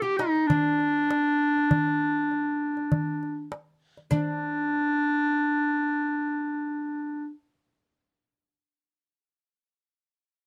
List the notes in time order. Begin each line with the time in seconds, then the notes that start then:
0.02 G4
0.17 D#4, darbuka tek
0.35 darbuka ka
0.47 D4, darbuka dum
0.80 darbuka ka
1.11 darbuka tek
1.57 darbuka ka
1.71 darbuka dum
1.87 darbuka ka
2.01 darbuka ka
2.31 darbuka ka
2.77 darbuka ka
2.92 darbuka dum
3.23 darbuka ka
3.52 darbuka tek
3.97 darbuka ka
4.11 D4, darbuka dum